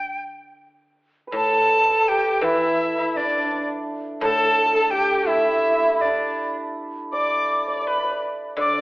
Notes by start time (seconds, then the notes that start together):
Already playing: D3 G5
1.27 B4
1.32 A2 A4 A5
1.89 A4
2.08 G4 G5
2.41 E3 E4 E5
2.98 E4
3.16 D4 D5
3.25 D4
3.30 D4
3.37 D4
3.45 D4
3.51 D4
3.58 D4
4.21 A2 A4 A5
4.29 A4
4.38 A4
4.44 A4
4.52 A4
4.58 A4
4.66 A4
4.74 A4
4.91 G4 G5
5.26 E4 E5
5.35 E4
5.45 E4
5.52 E4
5.60 E4
5.68 E4
5.74 E4
5.82 E4
6.01 D4 D5
7.12 D5 D6
7.68 D5
7.76 D5 D6
7.81 D5
7.87 B4 D5 B5
7.98 D5
8.04 D5
8.12 D5
8.57 D3 D5 D6
8.66 D5
8.73 D5